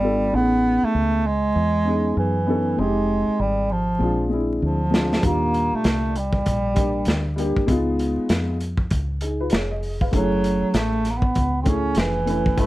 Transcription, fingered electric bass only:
Already playing: G#1
0.33 A1
0.83 muted fingered electric bass stroke
0.94 C#2
1.56 E2
2.17 F#2
2.78 F1
3.28 muted fingered electric bass stroke
3.39 G#1
4.00 A#1
4.62 D2
5.23 D#2
5.73 muted fingered electric bass stroke
5.84 C2
6.46 A#1
7.07 D2
7.56 muted fingered electric bass stroke
7.68 C#2
8.18 muted fingered electric bass stroke
8.29 F2
8.91 C#2
9.52 F1
10.13 F#1
10.62 muted fingered electric bass stroke
10.74 A1
11.36 C#2
11.96 F1
12.58 F#1

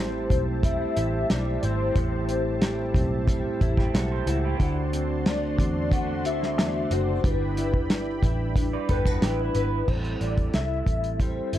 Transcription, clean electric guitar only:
3.78 E4 G4
3.94 F#4 A4
4.11 A4 C5
4.28 F#4 A4
4.44 E4 G4
8.73 B4 D5
8.90 G4 B4
9.06 F#4 A4
9.23 E4 G4
9.40 E4

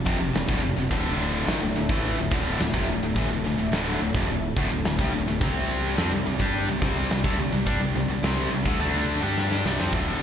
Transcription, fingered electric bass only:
0.06 F1
0.20 F1
0.34 F1
0.49 D1
0.63 F1
0.77 F1
0.91 D1
1.48 G#1
1.62 D1
1.76 D1
1.89 A1
2.18 D1
2.31 D1
2.60 D1
2.74 F1
2.88 D1
3.01 D1
3.16 A1
3.30 D1
3.44 D1
3.58 D1
3.72 D1
4.00 D1
4.14 F1
4.28 D1
4.56 D1
4.71 D1
4.85 D1
4.99 C2
5.14 D1
5.27 D1
5.41 C2
5.98 F2
6.12 C2
6.26 C2
6.40 G2
6.69 C2
6.82 C2
7.12 C2
7.24 D2
7.39 C2
7.53 C2
7.66 G2
7.81 C2
7.95 C2
8.09 C2
8.23 C2
8.51 C2
8.66 D2
8.79 D2
9.22 G2
9.65 C2
9.78 F2
9.93 D1

